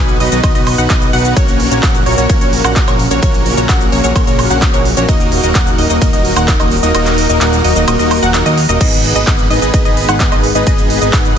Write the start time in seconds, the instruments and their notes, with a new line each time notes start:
Already playing: analog synth bass B1, analog synth pad D#3 F#3 B3 F#4 B4, supersaw synth B3 D#4 F#4 B4 G#5, synth pluck G#5
0.09 closed hi-hat, shaker
0.20 analog synth bass B1, supersaw synth B3 D#4 F#4 B4 D#5, synth pluck D#5, open hi-hat
0.32 analog synth bass B1, supersaw synth B3 D#4 F#4 B4 D#5, synth pluck D#5, closed hi-hat, shaker
0.43 analog synth bass B1, supersaw synth B3 D#4 F#4 B4 D#5, synth pluck D#5, kick, closed hi-hat, ride, high woodblock, shaker
0.55 analog synth bass B1, supersaw synth B3 D#4 F#4 B4 D#5, synth pluck D#5, closed hi-hat, shaker
0.67 open hi-hat, high woodblock
0.78 analog synth bass B1, supersaw synth B3 D#4 F#4 B4 F#5, synth pluck F#5, closed hi-hat, shaker
0.90 analog synth bass B1, synth pluck D#5, kick, clap, closed hi-hat, ride, shaker
1.02 closed hi-hat, shaker
1.13 analog synth bass B1, supersaw synth B3 D#4 F#4 B4 F#5, synth pluck F#5, open hi-hat
1.25 closed hi-hat, shaker
1.36 analog synth bass A#1, analog synth pad C#3 F#3 A#3 F#4 A#4, supersaw synth A#3 C#4 F#4 A#4 C#5, synth pluck C#5, kick, closed hi-hat, ride, shaker
1.48 closed hi-hat, shaker
1.60 open hi-hat
1.71 analog synth bass A#1, supersaw synth A#3 C#4 F#4 A#4 C#5, synth pluck C#5, closed hi-hat, shaker
1.83 analog synth bass A#1, supersaw synth C#4, synth pluck F#5, kick, clap, closed hi-hat, ride, shaker
1.95 closed hi-hat, shaker
2.06 analog synth bass A#1, supersaw synth A#3 C#4 F#4 A#4 C#5, synth pluck C#5, open hi-hat
2.18 analog synth bass A#1, supersaw synth A#3 C#4 F#4 A#4 C#5, synth pluck C#5, closed hi-hat, shaker
2.30 analog synth bass A#1, supersaw synth A#3 C#4 F#4, synth pluck C#5, kick, closed hi-hat, ride, shaker
2.41 analog synth bass A#1, supersaw synth A#3 C#4 F#4 A#4 C#5, synth pluck C#5, closed hi-hat, shaker
2.53 open hi-hat
2.64 analog synth bass A#1, supersaw synth A#3 C#4 F#4 A#4 F#5, synth pluck F#5, high woodblock, shaker
2.76 kick, clap, closed hi-hat, ride, shaker
2.88 analog synth bass A#1, supersaw synth A#3 C#4 F#4 A#4 C#5, synth pluck C#5, closed hi-hat, high woodblock, shaker
2.99 open hi-hat
3.11 analog synth bass A#1, supersaw synth A#3 C#4 F#4 A#4 C#5, synth pluck C#5, closed hi-hat, shaker
3.23 analog synth bass A#1, supersaw synth A#3 C#4 F#4 A#4 C#5, analog synth pad G#4, synth pluck C#5, kick, closed hi-hat, ride, shaker
3.34 closed hi-hat, shaker
3.46 open hi-hat
3.57 analog synth bass A#1, supersaw synth A#3 C#4 F#4 A#4 C#5, synth pluck C#5, closed hi-hat, shaker
3.69 analog synth bass A#1, supersaw synth A#3 C#4 F#4 A#4 F#5, synth pluck F#5, kick, clap, closed hi-hat, ride, shaker
3.81 closed hi-hat, shaker
3.92 analog synth bass A#1, supersaw synth A#3 C#4 F#4 A#4 C#5, synth pluck C#5, open hi-hat
4.04 analog synth bass A#1, supersaw synth A#3 C#4 F#4 A#4 C#5, synth pluck C#5, closed hi-hat, shaker
4.16 analog synth bass A#1, supersaw synth A#3 C#4 A#4 C#5, synth pluck C#5, kick, closed hi-hat, ride, high woodblock, shaker
4.27 analog synth bass A#1, supersaw synth A#3 C#4 F#4 A#4 C#5, synth pluck C#5, closed hi-hat, shaker
4.39 open hi-hat, high woodblock
4.50 analog synth bass A#1, supersaw synth A#3 C#4 F#4 A#4 F#5, synth pluck F#5, closed hi-hat, shaker
4.62 kick, clap, closed hi-hat, ride, shaker
4.74 analog synth bass A#1, supersaw synth A#3 C#4 F#4 A#4 C#5, synth pluck C#5, closed hi-hat, shaker
4.85 open hi-hat
4.97 analog synth bass A#1, supersaw synth A#3 C#4 F#4 A#4 C#5, synth pluck C#5, closed hi-hat, shaker
5.08 analog synth bass D#1, analog synth pad D#3 A#4, supersaw synth A#3 D#4 A#4 D#5, synth pluck D#5, kick, closed hi-hat, ride, shaker
5.20 closed hi-hat, shaker
5.32 open hi-hat
5.43 analog synth bass D#1, supersaw synth A#3 D#4 F#4 A#4 D#5, synth pluck D#5, closed hi-hat, shaker
5.55 analog synth bass D#1, supersaw synth A#3 D#4 A#4, synth pluck F#5, kick, clap, closed hi-hat, ride, shaker
5.67 closed hi-hat, shaker
5.78 analog synth bass D#1, supersaw synth A#3 D#4 F#4 A#4 D#5, synth pluck D#5, open hi-hat
5.90 analog synth bass D#1, supersaw synth A#3 D#4 F#4 A#4 D#5, synth pluck D#5, closed hi-hat, shaker
6.02 analog synth bass D#1, supersaw synth A#3 D#4 F#4 A#4 D#5, synth pluck D#5, kick, closed hi-hat, ride, shaker
6.13 analog synth bass D#1, supersaw synth A#3 D#4 F#4 A#4 D#5, synth pluck D#5, closed hi-hat, shaker
6.25 open hi-hat
6.36 analog synth bass D#1, supersaw synth A#3 D#4 F#4 A#4 F#5, synth pluck F#5, closed hi-hat, high woodblock, shaker
6.48 kick, clap, closed hi-hat, ride, shaker
6.60 analog synth bass D#1, supersaw synth A#3 D#4 F#4 A#4 D#5, synth pluck D#5, closed hi-hat, high woodblock, shaker
6.71 open hi-hat
6.83 analog synth bass D#1, supersaw synth A#3 D#4 F#4 A#4 D#5, synth pluck D#5, closed hi-hat, shaker
6.95 analog synth bass D#1, supersaw synth A#3 D#4 F#4 A#4 D#5, synth pluck D#5, closed hi-hat, ride, high woodblock, shaker
7.06 clap, closed hi-hat, shaker
7.18 open hi-hat
7.29 analog synth bass D#1, supersaw synth A#3 D#4 F#4 A#4 D#5, synth pluck D#5, closed hi-hat, shaker
7.41 analog synth bass D#1, supersaw synth A#3 D#4 F#4 A#4 F#5, synth pluck F#5, clap, closed hi-hat, ride, shaker
7.53 closed hi-hat, shaker
7.64 analog synth bass D#1, supersaw synth A#3 D#4 F#4 A#4 D#5, synth pluck D#5, open hi-hat
7.76 analog synth bass D#1, supersaw synth A#3 D#4 F#4 A#4 D#5, synth pluck D#5, closed hi-hat, shaker
7.88 analog synth bass D#1, supersaw synth A#3 D#4 F#4 A#4 D#5, synth pluck D#5, closed hi-hat, ride, high woodblock, shaker
7.99 analog synth bass D#1, supersaw synth A#3 D#4 F#4 A#4 D#5, synth pluck D#5, closed hi-hat, shaker
8.11 open hi-hat, high woodblock
8.23 analog synth bass D#1, supersaw synth A#3 D#4 F#4 A#4 F#5, synth pluck F#5, closed hi-hat, shaker
8.34 clap, closed hi-hat, ride, shaker
8.46 analog synth bass D#2, supersaw synth A#3 D#4 F#4 A#4 D#5, synth pluck D#5, closed hi-hat, shaker
8.58 open hi-hat
8.69 analog synth bass D#1, supersaw synth A#3 D#4 F#4 A#4 D#5, synth pluck D#5, closed hi-hat, shaker
8.81 analog synth bass G#1, analog synth pad D#3 G#3 B3 G#4 B4, supersaw synth B3 D#4 G#4 B4 D#5, synth pluck D#5, kick, closed hi-hat, ride, crash, shaker
8.92 closed hi-hat, shaker
9.04 open hi-hat
9.16 analog synth bass G#1, supersaw synth B3 D#4 G#4 B4 D#5, synth pluck D#5, closed hi-hat, shaker
9.27 analog synth bass G#1, supersaw synth B3 D#4 G#4 B4, synth pluck F#5, kick, clap, closed hi-hat, ride, shaker
9.39 closed hi-hat, shaker
9.50 analog synth bass G#1, supersaw synth B3 D#4 G#4 B4 D#5, synth pluck D#5, open hi-hat
9.62 analog synth bass G#1, supersaw synth B3 D#4 G#4 B4 D#5, synth pluck D#5, closed hi-hat, shaker
9.74 analog synth bass G#1, supersaw synth B3 D#4 G#4 B4 D#5, synth pluck D#5, kick, closed hi-hat, ride, shaker
9.85 analog synth bass G#1, supersaw synth B3 D#4 G#4 B4 D#5, synth pluck D#5, closed hi-hat, shaker
9.97 open hi-hat
10.08 analog synth bass G#1, supersaw synth B3 D#4 G#4 B4 F#5, synth pluck F#5, high woodblock, shaker
10.20 kick, clap, closed hi-hat, ride, shaker
10.32 analog synth bass G#1, supersaw synth B3 D#4 G#4 B4 D#5, synth pluck D#5, closed hi-hat, high woodblock, shaker
10.44 open hi-hat
10.55 analog synth bass G#1, supersaw synth B3 D#4 G#4 B4 D#5, synth pluck D#5, closed hi-hat, shaker
10.67 analog synth bass G#1, supersaw synth B3 D#4 G#4 B4 D#5, synth pluck D#5, kick, closed hi-hat, ride, shaker
10.78 closed hi-hat, shaker
10.90 open hi-hat
11.02 analog synth bass G#1, supersaw synth B3 D#4 G#4 B4 D#5, synth pluck D#5, closed hi-hat, shaker
11.13 analog synth bass G#1, supersaw synth B3 D#4 G#4 B4 F#5, synth pluck F#5, kick, clap, closed hi-hat, ride, shaker
11.25 closed hi-hat, shaker